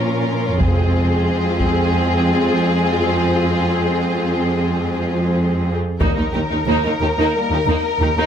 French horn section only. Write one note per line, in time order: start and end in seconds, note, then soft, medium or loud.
0.00 0.57 F3 soft
0.00 0.57 C#4 soft
0.58 5.63 G#3 soft
0.58 5.67 C4 soft
6.01 6.25 G3 soft
6.01 6.24 A#3 soft
7.35 7.58 G3 soft
7.35 7.58 A#3 soft